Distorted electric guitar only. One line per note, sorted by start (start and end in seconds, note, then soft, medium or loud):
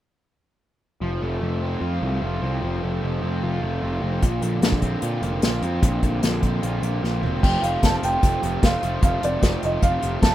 1.01 1.41 F3 medium
1.22 2.00 A3 medium
1.42 2.61 F3 medium
1.62 2.41 C4 medium
1.82 2.21 F4 medium
2.02 2.81 A3 medium
2.21 3.43 F4 medium
2.42 3.22 C4 medium
2.62 3.02 F3 medium
2.82 3.61 A3 medium
3.03 4.42 F3 medium
3.22 4.02 C4 medium
3.43 3.82 F4 medium
3.62 4.23 A3 medium
3.82 5.02 F4 medium
4.03 4.25 C4 medium
4.22 5.23 A#2 medium
4.43 4.60 D3 medium
4.61 5.62 D3 medium
4.82 5.62 C4 medium
5.02 5.41 F4 medium
5.23 6.23 A#3 medium
5.42 6.43 F4 medium
5.63 6.41 C4 medium
5.83 6.83 A#2 medium
6.03 6.22 D3 medium
6.23 7.23 D3 medium
6.42 7.22 C4 medium
6.62 7.03 F4 medium
6.84 7.43 A#3 medium
7.04 7.44 F4 medium
7.23 7.43 C4 medium
7.43 8.23 F2 medium
7.43 8.03 C3 medium
7.43 7.83 F3 medium
7.43 7.85 A3 medium
7.43 7.85 C4 medium
7.43 7.85 F4 medium
7.83 8.24 F3 medium
7.83 8.24 A3 medium
7.83 8.25 C4 medium
7.83 8.25 F4 medium
8.24 8.63 F2 loud
8.24 8.63 C3 medium
8.24 8.44 F3 medium
8.24 8.43 A3 medium
8.24 8.43 C4 medium
8.24 8.42 F4 loud
8.42 8.63 F3 medium
8.42 8.63 A3 medium
8.42 8.65 C4 medium
8.42 8.65 F4 medium
8.63 8.85 F3 medium
8.63 8.83 A3 medium
8.63 8.83 C4 medium
8.63 8.81 F4 medium
8.82 9.03 F3 medium
8.82 9.02 A3 medium
8.82 9.04 C4 medium
8.82 9.04 F4 medium
9.02 9.62 F2 medium
9.02 9.63 C3 medium
9.02 9.41 F3 medium
9.02 9.42 A3 medium
9.02 9.43 C4 medium
9.02 9.44 F4 medium
9.41 9.82 F3 medium
9.41 9.82 A3 medium
9.41 9.83 C4 medium
9.41 9.84 F4 medium
9.81 10.22 F2 medium
9.81 10.22 C3 loud
9.81 10.03 F3 loud
9.81 10.01 A3 medium
9.81 10.01 C4 medium
9.81 10.00 F4 medium
10.00 10.21 F3 medium
10.00 10.21 A3 medium
10.00 10.23 C4 medium
10.00 10.23 F4 medium
10.21 10.35 F3 medium
10.21 10.35 A3 medium
10.21 10.35 C4 medium
10.21 10.35 F4 medium